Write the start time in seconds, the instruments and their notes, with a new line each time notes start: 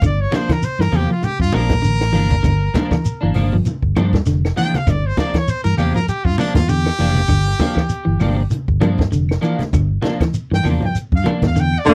0.01 fingered electric bass G1, clean electric guitar D3, kick, closed hi-hat, low conga, claves, shekere
0.06 trumpet D5
0.21 trumpet C#5
0.31 clean electric guitar F3 A#3 D4, trumpet C5, snare, closed hi-hat, high conga, shekere
0.49 clean electric guitar E3, trumpet A#4, kick, snare, closed hi-hat, high conga, claves
0.62 trumpet C5, closed hi-hat, shekere
0.79 fingered electric bass G2, clean electric guitar E3, trumpet A#4, snare
0.91 fingered electric bass E2, clean electric guitar F3 A#3, muted clean electric guitar stroke, open hi-hat, high conga, claves, shekere
0.96 trumpet G4
1.10 clean electric guitar F3, trumpet F4
1.23 trumpet G4, muted fingered electric bass stroke, closed hi-hat, high conga, shekere
1.40 fingered electric bass G2, trumpet F4, kick
1.52 fingered electric bass A#1, clean electric guitar F3 A#3 D4, trumpet A#4, muted clean electric guitar stroke, closed hi-hat, high conga, claves, shekere
1.69 kick, snare, closed hi-hat, low conga
1.82 fingered electric bass A1, clean electric guitar D3, closed hi-hat, shekere
2.01 snare, claves
2.13 fingered electric bass G1, clean electric guitar E3 F3 A#3 D4, snare, open hi-hat, high conga, shekere
2.30 kick, closed hi-hat, high conga
2.43 fingered electric bass G1, clean electric guitar D3, kick, closed hi-hat, low conga, claves, shekere
2.74 clean electric guitar F3 A#3 D4, kick, snare, closed hi-hat, high conga, shekere
2.91 clean electric guitar E3, kick, snare, high conga, claves
3.04 closed hi-hat, shekere
3.21 fingered electric bass G1, clean electric guitar E3 A#3 D4
3.34 fingered electric bass G1, clean electric guitar F3 A#3 D4, open hi-hat, high conga, claves, shekere
3.52 clean electric guitar F3, low conga
3.65 closed hi-hat, high conga, shekere
3.82 fingered electric bass G1, kick
3.96 fingered electric bass G2, clean electric guitar F3 A#3 D4, closed hi-hat, high conga, claves, shekere
4.13 kick, snare, low conga
4.26 fingered electric bass F1, clean electric guitar D3, snare, closed hi-hat, shekere
4.45 snare, claves
4.56 clean electric guitar E3 F3 A#3 D4, trumpet G5, closed hi-hat, high conga, shekere
4.74 trumpet F5, muted fingered electric bass stroke, snare, closed hi-hat, high conga
4.87 fingered electric bass G1, clean electric guitar D3, trumpet D5, kick, closed hi-hat, low conga, claves, shekere
5.06 trumpet C5
5.17 clean electric guitar F3 A#3 D4, trumpet D5, kick, snare, closed hi-hat, high conga, shekere
5.34 clean electric guitar E3, kick, snare, closed hi-hat, claves
5.38 trumpet C#5
5.48 trumpet C5, closed hi-hat, shekere
5.64 fingered electric bass G2, clean electric guitar E3, trumpet A#4
5.77 fingered electric bass E2, clean electric guitar F3 A#3 D4, trumpet G4, open hi-hat, high conga, claves, shekere
5.95 clean electric guitar F3, trumpet A#4, low conga
6.08 trumpet G4, muted fingered electric bass stroke, closed hi-hat, shekere
6.25 fingered electric bass G2, trumpet F4, kick
6.38 clean electric guitar F3 A#3 D4, trumpet D4, muted fingered electric bass stroke, closed hi-hat, high conga, claves, shekere
6.54 fingered electric bass E2, trumpet F4, kick, snare, closed hi-hat, low conga
6.68 clean electric guitar D3, trumpet G4, closed hi-hat, shekere
6.86 snare, claves
6.99 fingered electric bass F1, clean electric guitar E3 F3 A#3 D4, snare, closed hi-hat, shekere
7.15 closed hi-hat, high conga
7.28 fingered electric bass G1, clean electric guitar D3, kick, closed hi-hat, low conga, claves, shekere
7.48 snare
7.59 clean electric guitar F3 A#3 D4, kick, snare, closed hi-hat, high conga, shekere
7.75 clean electric guitar E3, kick, snare, claves
7.89 closed hi-hat, shekere
8.05 fingered electric bass G1, clean electric guitar E3
8.20 fingered electric bass G1, clean electric guitar F3 A#3 D4, open hi-hat, high conga, claves, shekere
8.37 muted clean electric guitar stroke
8.50 closed hi-hat, high conga, shekere
8.68 fingered electric bass G1, kick
8.81 fingered electric bass G2, clean electric guitar F3 A#3 D4, closed hi-hat, high conga, claves, shekere
8.98 kick, snare, low conga
9.12 fingered electric bass F1, clean electric guitar D3, closed hi-hat, shekere
9.29 snare, claves
9.41 clean electric guitar E3 F3 A#3 D4, closed hi-hat, shekere
9.59 muted fingered electric bass stroke, snare, closed hi-hat, high conga
9.73 fingered electric bass G1, clean electric guitar D3, kick, closed hi-hat, low conga, claves, shekere
10.02 clean electric guitar F3 A#3 D4, snare, closed hi-hat, high conga, shekere
10.21 clean electric guitar E3, kick, snare, closed hi-hat, high conga, claves
10.34 closed hi-hat, shekere
10.51 fingered electric bass G2, clean electric guitar E3, trumpet G5, snare
10.63 fingered electric bass E2, clean electric guitar F3 A#3 D4, open hi-hat, high conga, claves, shekere
10.81 clean electric guitar F3, low conga
10.85 trumpet G5
10.95 muted fingered electric bass stroke, closed hi-hat, shekere
11.12 fingered electric bass G2, trumpet F5, kick
11.24 clean electric guitar F3 A#3 D4, muted fingered electric bass stroke, closed hi-hat, high conga, claves, shekere
11.42 fingered electric bass E2, kick, snare, closed hi-hat, low conga
11.48 trumpet F5
11.56 clean electric guitar D3, snare, shekere
11.60 trumpet G5
11.74 claves
11.79 trumpet D5
11.85 fingered electric bass F1, baritone saxophone D3, clean electric guitar D3 F3 A#3 D4, alto saxophone A#3, trombone D4, snare, high conga, shekere
11.91 trumpet F5